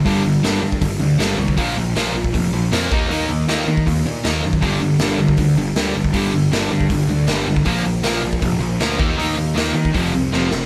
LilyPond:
<<
  \new Staff \with { instrumentName = "Distorted electric guitar" } { \clef bass \time 4/4 \key g \minor \tempo 4 = 158 <g, d g>8 <g, d>8 <g, d g>8 <g, d>8 <g, d>8 <g, d>8 <g, d g>8 <g, d>8 | <bes, f bes>8 <bes, f>8 <bes, f bes>8 <bes, f>8 <bes, f>8 <bes, f>8 <bes, f bes>8 <ees bes ees'>8 | <ees bes ees'>8 <ees bes>8 <ees bes ees'>8 <ees bes>8 <ees bes>8 <ees bes>8 <ees bes ees'>8 <ees bes>8 | <g, d g>8 <g, d>8 <g, d g>8 <g, d>8 <g, d>8 <g, d>8 <g, d g>8 <g, d>8 |
<g, d g>8 <g, d>8 <g, d g>8 <g, d>8 <g, d>8 <g, d>8 <g, d g>8 <g, d>8 | <bes, f bes>8 <bes, f>8 <bes, f bes>8 <bes, f>8 <bes, f>8 <bes, f>8 <bes, f bes>8 <ees bes ees'>8 | <ees bes ees'>8 <ees bes>8 <ees bes ees'>8 <ees bes>8 <f, c f>8 <f, c>8 <f, c f>8 <f, c>8 | }
  \new Staff \with { instrumentName = "Overdriven electric guitar" } { \clef bass \time 4/4 \key g \minor <g, d g>8 <g, d>8 <g, d g>8 <g, d>8 <g, d>8 <g, d>8 <g, d g>8 <g, d>8 | <bes, f bes>8 <bes, f>8 <bes, f bes>8 <bes, f>8 <bes, f>8 <bes, f>8 <bes, f bes>8 <ees bes ees'>8 | <ees bes ees'>8 <ees bes>8 <ees bes ees'>8 <ees bes>8 <ees bes>8 <ees bes>8 <ees bes ees'>8 <ees bes>8 | <g, d g>8 <g, d>8 <g, d g>8 <g, d>8 <g, d>8 <g, d>8 <g, d g>8 <g, d>8 |
<g, d g>8 <g, d>8 <g, d g>8 <g, d>8 <g, d>8 <g, d>8 <g, d g>8 <g, d>8 | <bes, f bes>8 <bes, f>8 <bes, f bes>8 <bes, f>8 <bes, f>8 <bes, f>8 <bes, f bes>8 <ees bes ees'>8 | <ees bes ees'>8 <ees bes>8 <ees bes ees'>8 <ees bes>8 <f, c f>8 <f, c>8 <f, c f>8 <f, c>8 | }
  \new Staff \with { instrumentName = "Picked electric bass" } { \clef bass \time 4/4 \key g \minor g,,8 g,,8 g,,8 g,8 g,,8 d,8 g,,8 c,8 | bes,,8 bes,,8 bes,,8 bes,,8 f,,8 bes,,8 f,8 ees,8 | ees,8 ees,8 ees,8 ees8 ees,8 bes,8 ees,8 fis,8 | g,,8 g,,8 g,,8 g,,8 d,8 g,,8 d,8 g,,8 |
g,,8 g,,8 g,,8 g,8 g,,8 d,8 g,,8 g,,8 | bes,,8 bes,,8 bes,,8 bes,,8 f,,8 bes,,8 d,8 ees,8 | ees,8 ees,8 ees,8 ees8 f,,8 c,8 f,,8 f,,8 | }
  \new DrumStaff \with { instrumentName = "Drums" } \drummode { \time 4/4 <hho bd>4 <hho sn>8. bd16 <hho bd>4 <hho sn>8. bd16 | <hho bd>4 <hho sn>8. bd16 <hho bd>4 <hho sn>8 bd8 | hho4 <hho sn>8. bd16 <hho bd>4 <hho sn>8. bd16 | <hho bd>4 <hho sn>8. bd16 <hho bd>4 <hho sn>8. bd16 |
<hho bd>4 <hho sn>8. bd16 <hho bd>4 <hho sn>8. bd16 | <hho bd>4 <hho sn>8. bd16 <hho bd>4 <hho sn>8 bd8 | hho4 <hho sn>8. bd16 <hho bd>4 sn8 sn8 | }
>>